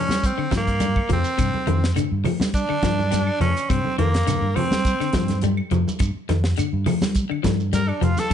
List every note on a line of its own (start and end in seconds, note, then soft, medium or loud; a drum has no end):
0.00 0.12 F3 medium
0.00 0.28 C#4 medium
0.09 0.32 G3 medium
0.09 snare medium
0.09 high conga medium
0.09 shekere medium
0.24 0.54 C4 medium
0.24 kick medium
0.24 closed hi-hat medium
0.24 shekere medium
0.38 0.47 D3 medium
0.38 muted fingered electric bass stroke soft
0.38 claves medium
0.51 0.99 G2 medium
0.51 0.70 F3 medium
0.51 kick medium
0.51 snare medium
0.51 closed hi-hat medium
0.51 high conga medium
0.51 shekere medium
0.57 1.08 A#3 medium
0.67 kick medium
0.67 closed hi-hat soft
0.67 shekere soft
0.80 0.99 G3 medium
0.80 closed hi-hat medium
0.80 high conga medium
0.80 shekere medium
0.96 kick medium
0.96 claves medium
1.09 1.22 F2 medium
1.09 1.27 F3 medium
1.09 1.94 C4 medium
1.09 kick medium
1.09 closed hi-hat soft
1.09 low conga medium
1.09 shekere soft
1.24 shekere medium
1.38 1.51 G2 medium
1.38 1.56 C3 medium
1.38 kick loud
1.38 closed hi-hat medium
1.38 claves medium
1.38 shekere medium
1.54 muted fingered electric bass stroke soft
1.54 high conga medium
1.67 1.91 F2 medium
1.67 1.85 D#3 medium
1.67 closed hi-hat medium
1.67 high conga medium
1.84 snare medium
1.84 shekere soft
1.96 2.14 D3 medium
1.96 closed hi-hat medium
1.96 low conga medium
1.96 claves medium
1.96 shekere medium
2.12 2.23 G2 medium
2.24 2.43 F3 medium
2.24 open hi-hat medium
2.24 low conga medium
2.24 claves medium
2.24 shekere soft
2.40 2.64 G3 medium
2.40 snare medium
2.40 high conga medium
2.40 shekere medium
2.54 3.37 D4 medium
2.54 kick medium
2.54 closed hi-hat medium
2.54 shekere medium
2.69 2.78 D3 medium
2.69 muted fingered electric bass stroke soft
2.69 claves medium
2.82 3.29 G2 medium
2.82 3.01 F3 medium
2.82 kick medium
2.82 snare medium
2.82 closed hi-hat medium
2.82 high conga medium
2.82 shekere medium
2.99 high conga medium
2.99 shekere soft
3.11 3.29 G3 medium
3.11 snare soft
3.11 closed hi-hat medium
3.11 high conga medium
3.11 shekere loud
3.27 claves medium
3.40 3.53 F2 medium
3.40 3.59 F3 medium
3.40 3.71 C#4 medium
3.40 closed hi-hat medium
3.40 low conga medium
3.40 shekere soft
3.57 closed hi-hat medium
3.57 shekere medium
3.70 3.82 G2 loud
3.70 3.88 C3 medium
3.70 3.98 C4 medium
3.70 kick loud
3.70 closed hi-hat medium
3.70 claves medium
3.70 shekere medium
3.85 muted fingered electric bass stroke soft
3.85 high conga medium
3.98 4.21 F2 medium
3.98 4.16 D#3 medium
3.98 4.57 A#3 medium
3.98 closed hi-hat medium
3.98 high conga medium
4.14 snare medium
4.14 closed hi-hat medium
4.14 shekere soft
4.27 4.45 D3 medium
4.27 snare soft
4.27 closed hi-hat medium
4.27 high conga medium
4.27 low conga medium
4.27 claves medium
4.27 shekere medium
4.41 4.53 G2 loud
4.56 4.74 F3 medium
4.56 5.42 C4 medium
4.56 open hi-hat medium
4.56 low conga medium
4.56 claves medium
4.56 shekere soft
4.71 4.94 G3 medium
4.71 snare medium
4.71 high conga medium
4.71 shekere medium
4.85 kick medium
4.85 closed hi-hat medium
4.85 shekere medium
5.00 5.09 D3 medium
5.00 muted fingered electric bass stroke soft
5.00 snare soft
5.00 claves medium
5.13 5.60 G2 medium
5.13 5.32 F3 medium
5.13 kick medium
5.13 snare medium
5.13 closed hi-hat medium
5.13 high conga medium
5.13 shekere medium
5.28 snare soft
5.28 closed hi-hat soft
5.28 high conga medium
5.28 shekere soft
5.41 5.61 G3 medium
5.41 closed hi-hat medium
5.41 high conga medium
5.41 shekere medium
5.57 claves medium
5.71 5.83 F2 medium
5.71 5.89 F3 medium
5.71 closed hi-hat soft
5.71 low conga medium
5.71 shekere soft
5.88 high conga medium
5.88 shekere medium
5.99 6.13 G2 medium
5.99 muted clean electric guitar stroke medium
5.99 kick loud
5.99 closed hi-hat medium
5.99 claves medium
5.99 shekere medium
6.15 muted fingered electric bass stroke soft
6.29 6.52 F2 medium
6.29 6.47 D#3 medium
6.29 snare soft
6.29 closed hi-hat medium
6.29 high conga medium
6.44 snare medium
6.44 shekere soft
6.57 6.76 D3 medium
6.57 closed hi-hat medium
6.57 claves medium
6.57 shekere medium
6.73 6.84 G2 medium
6.86 7.04 F3 medium
6.86 open hi-hat medium
6.86 low conga medium
6.86 claves medium
6.86 shekere soft
7.01 7.25 G3 medium
7.01 snare medium
7.01 high conga medium
7.01 shekere medium
7.15 kick medium
7.15 closed hi-hat medium
7.15 shekere medium
7.30 7.39 D3 medium
7.30 muted fingered electric bass stroke soft
7.30 claves medium
7.43 7.91 G2 medium
7.43 7.62 F3 medium
7.43 kick medium
7.43 snare medium
7.43 closed hi-hat medium
7.43 high conga loud
7.43 shekere medium
7.60 shekere soft
7.73 7.91 G3 medium
7.73 7.90 A#4 medium
7.73 closed hi-hat medium
7.73 high conga medium
7.73 shekere medium
7.88 8.05 D4 medium
7.88 claves medium
8.01 8.14 F2 medium
8.01 8.20 F3 medium
8.01 8.21 F4 medium
8.01 closed hi-hat medium
8.01 low conga medium
8.01 shekere soft
8.17 8.34 A4 medium
8.17 snare soft
8.17 closed hi-hat soft
8.17 high conga medium
8.17 shekere medium
8.30 8.34 C3 medium